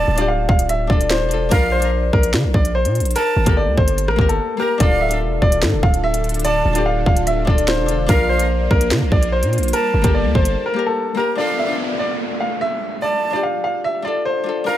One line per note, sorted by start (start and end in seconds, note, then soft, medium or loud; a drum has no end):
0.00 0.15 D4 medium
0.00 0.18 F4 medium
0.00 0.76 A4 medium
0.00 0.16 D5 loud
0.00 0.26 A5 loud
0.00 downlifter medium
0.08 0.47 D1 loud
0.15 0.87 D4 medium
0.15 0.89 F4 medium
0.15 0.26 D5 medium
0.15 closed hi-hat medium
0.20 2.56 G4 medium
0.28 0.45 F5 medium
0.49 0.88 D1 loud
0.49 0.65 F5 medium
0.49 kick loud
0.59 closed hi-hat medium
0.69 0.86 E5 medium
0.69 closed hi-hat medium
0.87 1.22 D1 loud
0.87 1.25 D4 medium
0.87 1.26 F4 medium
0.87 1.06 D5 medium
0.87 kick loud
0.92 1.27 A4 medium
1.01 closed hi-hat medium
1.10 1.49 C5 medium
1.10 snare loud
1.21 1.50 E1 loud
1.28 1.48 D4 medium
1.28 1.49 F4 medium
1.28 closed hi-hat medium
1.33 1.50 A4 medium
1.49 2.11 A#1 loud
1.49 1.77 D4 medium
1.49 1.79 F4 medium
1.49 1.68 A#4 medium
1.49 1.90 F5 loud
1.49 kick loud
1.49 closed hi-hat medium
1.54 1.80 A#4 loud
1.72 2.11 C5 medium
1.80 4.60 D4 medium
1.80 4.34 F4 medium
1.80 closed hi-hat medium
1.85 3.55 A#4 medium
2.13 2.35 A#1 loud
2.13 2.30 A#4 medium
2.13 kick loud
2.23 closed hi-hat medium
2.34 2.45 D3 loud
2.34 snare loud
2.44 2.54 A#1 loud
2.54 2.86 A#1 loud
2.54 2.71 D5 medium
2.54 kick loud
2.65 closed hi-hat medium
2.75 3.13 C5 medium
2.85 3.02 A#2 loud
2.85 closed hi-hat medium
2.95 closed hi-hat soft
3.00 3.15 A#1 loud
3.00 closed hi-hat medium
3.05 closed hi-hat medium
3.11 closed hi-hat medium
3.16 3.45 A#4 loud
3.16 3.54 A5 loud
3.16 closed hi-hat medium
3.36 3.46 G1 loud
3.44 3.69 G1 loud
3.44 4.16 A#3 medium
3.44 4.18 G4 medium
3.44 3.55 A#4 medium
3.44 kick loud
3.44 closed hi-hat medium
3.49 4.22 A4 medium
3.57 3.74 D5 medium
3.67 3.77 D2 loud
3.77 4.10 G1 loud
3.77 4.06 C5 medium
3.77 kick loud
3.88 closed hi-hat medium
3.98 closed hi-hat medium
4.08 4.18 A1 loud
4.08 4.25 A#4 medium
4.08 cross-stick loud
4.16 4.39 G1 loud
4.16 4.53 A#3 medium
4.16 4.55 G4 medium
4.16 kick loud
4.21 4.56 A#4 medium
4.29 4.58 A4 medium
4.29 closed hi-hat medium
4.57 4.76 A#3 medium
4.57 4.78 G4 medium
4.57 4.76 A#4 medium
4.57 4.79 A#5 medium
4.62 4.79 A#4 medium
4.78 5.23 D1 loud
4.78 8.06 D3 medium
4.78 5.06 D4 medium
4.78 11.34 D4 medium
4.78 9.69 F4 medium
4.78 5.07 F4 medium
4.78 8.06 A4 loud
4.78 4.97 D5 medium
4.78 5.19 F5 loud
4.78 kick loud
4.78 closed hi-hat medium
4.83 5.09 A4 loud
5.01 5.39 E5 medium
5.09 6.73 D4 medium
5.09 6.75 F4 medium
5.09 closed hi-hat medium
5.14 7.33 A4 medium
5.21 5.41 E1 loud
5.42 5.64 D1 loud
5.42 5.58 D5 medium
5.42 kick loud
5.52 closed hi-hat medium
5.62 5.74 A2 loud
5.62 snare loud
5.73 5.82 D1 loud
5.83 6.62 D1 loud
5.83 5.99 F5 medium
5.83 kick loud
5.94 closed hi-hat medium
6.04 6.42 E5 loud
6.14 closed hi-hat medium
6.24 closed hi-hat soft
6.29 closed hi-hat medium
6.34 closed hi-hat medium
6.39 closed hi-hat medium
6.44 6.74 D5 loud
6.44 6.83 A5 loud
6.44 closed hi-hat medium
6.65 7.05 D1 loud
6.73 7.44 D4 medium
6.73 7.47 F4 medium
6.73 6.84 D5 medium
6.73 closed hi-hat medium
6.78 9.13 G4 medium
6.86 7.02 F5 medium
7.06 7.46 D1 loud
7.06 7.23 F5 medium
7.06 kick loud
7.16 closed hi-hat medium
7.27 7.43 E5 medium
7.27 closed hi-hat medium
7.45 7.80 D1 loud
7.45 7.82 D4 medium
7.45 7.83 F4 medium
7.45 7.64 D5 medium
7.45 kick loud
7.50 7.85 A4 medium
7.58 closed hi-hat medium
7.68 8.07 C5 loud
7.68 snare loud
7.78 8.07 E1 loud
7.86 8.05 D4 medium
7.86 8.06 F4 medium
7.86 closed hi-hat medium
7.91 8.08 A4 medium
8.06 8.68 A#1 loud
8.06 9.72 A#3 medium
8.06 8.35 D4 medium
8.06 8.36 F4 medium
8.06 8.25 A#4 medium
8.06 8.48 F5 loud
8.06 kick loud
8.06 closed hi-hat medium
8.11 8.37 A#4 loud
8.29 8.68 C5 medium
8.37 11.17 D4 medium
8.37 10.92 F4 medium
8.37 closed hi-hat medium
8.42 10.13 A#4 medium
8.71 8.93 A#1 loud
8.71 8.87 A#4 medium
8.71 kick loud
8.81 closed hi-hat medium
8.91 9.03 D3 loud
8.91 snare loud
9.01 9.11 A#1 loud
9.12 9.44 A#1 loud
9.12 9.28 D5 medium
9.12 kick loud
9.23 closed hi-hat medium
9.32 9.71 C5 medium
9.43 9.59 A#2 loud
9.43 closed hi-hat medium
9.53 closed hi-hat soft
9.58 9.73 A#1 loud
9.58 closed hi-hat medium
9.63 closed hi-hat medium
9.68 closed hi-hat medium
9.73 11.36 G3 medium
9.73 11.36 A#3 medium
9.73 10.02 A#4 loud
9.73 10.12 A5 loud
9.73 11.36 A5 medium
9.73 closed hi-hat medium
9.94 10.04 G1 loud
10.02 10.26 G1 loud
10.02 10.73 A#3 medium
10.02 10.76 G4 medium
10.02 10.12 A#4 medium
10.02 kick loud
10.02 closed hi-hat medium
10.07 10.80 A4 medium
10.15 10.31 D5 medium
10.25 10.34 D2 loud
10.35 10.56 G1 loud
10.35 10.64 C5 medium
10.35 kick loud
10.45 closed hi-hat medium
10.66 10.82 A#4 medium
10.74 11.11 A#3 medium
10.74 11.12 G4 medium
10.79 11.13 A#4 medium
10.86 11.15 A4 medium
11.14 11.34 A#3 medium
11.14 11.35 G4 medium
11.14 11.34 A#4 medium
11.14 11.36 A#5 medium
11.19 11.36 A#4 medium
11.35 11.64 D4 medium
11.35 11.65 F4 medium
11.35 11.54 D5 medium
11.35 11.76 F5 loud
11.35 downlifter medium
11.40 11.66 A4 loud
11.58 11.97 E5 medium
11.66 13.30 D4 medium
11.66 13.33 F4 medium
11.71 13.91 A4 medium
11.99 12.16 D5 medium
12.40 12.57 F5 medium
12.61 13.00 E5 medium
13.02 13.31 D5 medium
13.02 13.41 A5 loud
13.30 14.02 D4 medium
13.30 14.04 F4 medium
13.30 13.41 D5 medium
13.35 14.78 G4 medium
13.43 13.60 F5 medium
13.64 13.80 F5 medium
13.84 14.01 E5 medium
14.02 14.40 D4 medium
14.02 14.41 F4 medium
14.02 14.21 D5 medium
14.07 14.42 A4 medium
14.25 14.64 C5 medium
14.44 14.63 D4 medium
14.44 14.64 F4 medium
14.49 14.65 A4 medium
14.64 14.78 D4 medium
14.64 14.78 F4 medium
14.64 14.78 A#4 medium
14.64 14.78 F5 loud
14.69 14.78 A#4 loud